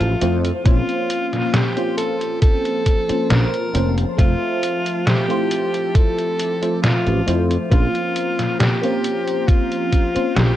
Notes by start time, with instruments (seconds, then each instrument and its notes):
Already playing: analog synth pad F3 C5 E5 A5, fm electric piano A3 C4 F4 C5 E5, alto saxophone F4
0.00 fretless electric bass A1, closed hi-hat
0.21 fretless electric bass F2, fm electric piano A3 C4 E4 F4 C5, closed hi-hat
0.45 closed hi-hat
0.64 fretless electric bass A#1, analog synth pad F3 F5 C6, fm electric piano A#3 C4 C#4 F4 C5, alto saxophone F4, kick, closed hi-hat
0.89 closed hi-hat
1.10 closed hi-hat
1.33 snare, closed hi-hat
1.53 alto saxophone G4, snare, closed hi-hat
1.75 fm electric piano A#3 C4 C#4 F4 C5, closed hi-hat
1.97 alto saxophone A4, closed hi-hat
2.21 closed hi-hat
2.42 alto saxophone A4, analog synth pad A5, kick, closed hi-hat
2.65 closed hi-hat
2.86 kick, closed hi-hat
3.08 fm electric piano A#3 C4 C#4 F4 C5, muted fretless electric bass stroke, closed hi-hat
3.30 fretless electric bass A#1, alto saxophone A#4, snare, closed hi-hat
3.54 closed hi-hat
3.73 fretless electric bass F1, fm electric piano A#3 C4 C#4 F4 C5, closed hi-hat
3.98 closed hi-hat
4.17 fretless electric bass F1, fm electric piano A3 C4 F4 C5 E5, alto saxophone F4, analog synth pad E5, kick, closed hi-hat
4.63 closed hi-hat
4.86 closed hi-hat
5.07 alto saxophone G4, snare, closed hi-hat
5.28 fm electric piano A3 C4 E4 F4 C5, closed hi-hat
5.51 closed hi-hat
5.74 closed hi-hat
5.94 alto saxophone A4, analog synth pad D6, kick, closed hi-hat
6.18 closed hi-hat
6.39 closed hi-hat
6.61 fm electric piano A3 C4 F4 C5 E5, closed hi-hat
6.82 alto saxophone F4, snare, closed hi-hat
7.07 fretless electric bass A1, closed hi-hat
7.26 fretless electric bass F2, fm electric piano A3 C4 E4 F4 C5, closed hi-hat
7.51 closed hi-hat
7.70 fretless electric bass A#1, fm electric piano A#3 C4 C#4 F4 C5, alto saxophone F4, analog synth pad A#5 C6, kick, closed hi-hat
7.95 closed hi-hat
8.16 closed hi-hat
8.39 snare, closed hi-hat
8.59 alto saxophone G4, snare, closed hi-hat
8.81 fm electric piano A#3 C4 C#4 F4 C5, closed hi-hat
9.04 closed hi-hat
9.28 closed hi-hat
9.48 alto saxophone F4, kick, closed hi-hat
9.72 closed hi-hat
9.92 kick, closed hi-hat
10.15 fm electric piano A#3 C4 C#4 F4 C5, muted fretless electric bass stroke, closed hi-hat
10.36 fretless electric bass A#1, alto saxophone G4, snare, closed hi-hat